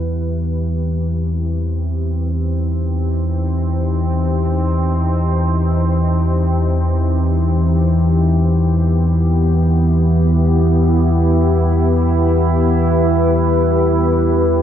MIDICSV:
0, 0, Header, 1, 3, 480
1, 0, Start_track
1, 0, Key_signature, 1, "minor"
1, 0, Tempo, 500000
1, 14038, End_track
2, 0, Start_track
2, 0, Title_t, "Ambient pad"
2, 0, Program_c, 0, 92
2, 0, Note_on_c, 0, 67, 71
2, 87, Note_on_c, 0, 60, 78
2, 1088, Note_on_c, 0, 63, 72
2, 3107, Note_on_c, 0, 72, 72
2, 7179, Note_on_c, 0, 59, 84
2, 7180, Note_off_c, 0, 60, 0
2, 7182, Note_off_c, 0, 72, 0
2, 7189, Note_off_c, 0, 63, 0
2, 8508, Note_on_c, 0, 64, 85
2, 10387, Note_on_c, 0, 71, 79
2, 14038, Note_off_c, 0, 59, 0
2, 14038, Note_off_c, 0, 64, 0
2, 14038, Note_off_c, 0, 67, 0
2, 14038, Note_off_c, 0, 71, 0
2, 14038, End_track
3, 0, Start_track
3, 0, Title_t, "Synth drone"
3, 0, Program_c, 1, 95
3, 0, Note_on_c, 1, 40, 71
3, 0, Note_on_c, 1, 52, 71
3, 14038, Note_off_c, 1, 40, 0
3, 14038, Note_off_c, 1, 52, 0
3, 14038, End_track
0, 0, End_of_file